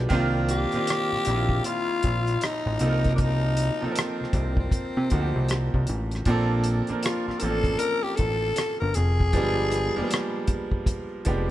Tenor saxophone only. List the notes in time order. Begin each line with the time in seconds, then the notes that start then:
0.50 G4
1.66 F4
2.44 D#4
3.15 D4
3.21 D#4
3.92 B3
3.97 C4
4.60 C4
7.04 F4
7.28 F4
7.39 A4 A#4
7.79 A#4
8.03 G4
8.16 A4
8.80 A#4
8.95 G#4